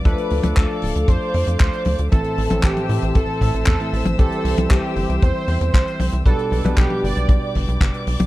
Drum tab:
HH |xxoxx-oxx-oxxxox|xxoxxxoxx-oxxxox|xxoxx-oxx-oxxxox|xxoxx-oxx-oxxxox|
CP |----x-------x---|----x-------x---|----x-------x---|----x-------x---|
T1 |---o----------o-|---o-o---------o|---o----------o-|---o-o---------o|
BD |o---o---o---o---|o---o---o-o-o---|o---o---o---o---|o---o---o-o-o---|